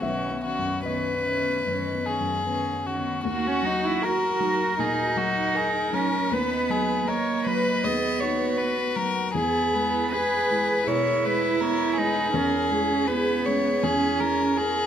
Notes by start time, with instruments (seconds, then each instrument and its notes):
0.01 felt piano B1 E5, cello D#3, viola C#4, violin F#4, vibraphone B4
0.24 vibraphone B5
0.30 felt piano B3
0.44 cello D#3, viola C#4, violin F#4, vibraphone B5
0.59 felt piano F#2
0.65 vibraphone B5
0.86 cello D#3, felt piano B3 D#5, viola C#4, vibraphone B4, violin B4
1.06 vibraphone F#5
1.13 felt piano C#4
1.26 cello D#3, viola C#4, vibraphone D#5
1.40 felt piano B3
1.66 felt piano F#2, cello D#3, viola C#4, vibraphone B4
1.86 vibraphone D#5
1.94 felt piano B3
2.06 cello D#3, viola C#4, violin G#4
2.20 felt piano F#2
2.27 vibraphone F#5
2.45 cello D#3, felt piano B3, viola C#4, vibraphone B4
2.66 vibraphone F#5
2.72 felt piano C#4
2.85 cello D#3, viola C#4, violin F#4, vibraphone F#5
2.98 felt piano B3
3.05 vibraphone B5
3.25 felt piano D#2, cello A#3, vibraphone D#4, violin F#4, viola F#4
3.45 cello C#4, vibraphone F#4
3.62 felt piano F#3, cello D#4
3.83 vibraphone D#4, cello E4
4.01 vibraphone F#4, cello F#4, felt piano A#4, viola A#4, violin A#4
4.21 vibraphone F#4
4.40 felt piano F#3, vibraphone D#4
4.60 vibraphone F#4
4.78 felt piano A#2, vibraphone D#4, cello D#4, violin G#4
4.98 vibraphone F#4
5.16 felt piano F#3, violin F#4
5.36 vibraphone D#4
5.54 violin G#4, felt piano A#4, viola A#4
5.92 felt piano F#3, cello C#4, vibraphone D#4, violin A#4
6.12 vibraphone A#4
6.31 felt piano D#2, cello B3, vibraphone B4, viola B4, violin B4
6.50 vibraphone D#5
6.69 felt piano F#3, violin G#4, vibraphone D#5
6.88 vibraphone B4
7.07 cello A#3, violin A#4, viola C#5, vibraphone D#5, felt piano D#5
7.27 vibraphone D#5
7.45 felt piano F#3, vibraphone B4, violin B4, viola B4
7.65 vibraphone D#5
7.84 felt piano D#2, cello B3, viola G#4, vibraphone B4, violin D#5
8.02 vibraphone D#5
8.20 felt piano D#3, viola F#4, violin C#5
8.38 vibraphone B4
8.58 violin B4, felt piano B4
8.95 felt piano F#3, violin A#4, vibraphone B4
9.15 vibraphone F#5
9.34 felt piano E2, cello B3, vibraphone E4, viola G#4, violin G#4
9.53 vibraphone G#4
9.73 felt piano G#3, vibraphone G#4, viola B4
9.94 vibraphone E4
10.12 cello G#4, vibraphone G#4, felt piano B4, violin B4
10.32 vibraphone G#4
10.50 felt piano G#3, vibraphone E4
10.70 vibraphone G#4
10.87 felt piano B2, cello E4, vibraphone E4, viola A#4, violin C#5
11.06 vibraphone G#4
11.24 felt piano G#3, viola G#4, violin B4
11.43 vibraphone E4
11.60 felt piano B3, violin A#4, viola C#5
11.97 felt piano G#3, cello D#4, vibraphone E4, violin G#4, viola B4
12.17 vibraphone B4
12.33 felt piano E2, cello C#4, vibraphone C#4, viola A#4
12.53 vibraphone E4
12.70 felt piano G#3, vibraphone E4, viola G#4
12.90 vibraphone C#4
13.07 cello B3, felt piano G#4, viola G#4, violin B4
13.27 vibraphone E4
13.45 felt piano G#3, vibraphone C#4, violin C#5
13.65 vibraphone E4
13.83 felt piano E2, cello C#4, vibraphone C#4, violin G#4
14.03 vibraphone E4
14.20 felt piano E3, violin A#4
14.39 vibraphone C#4
14.57 violin G#4, felt piano G#4, viola A#4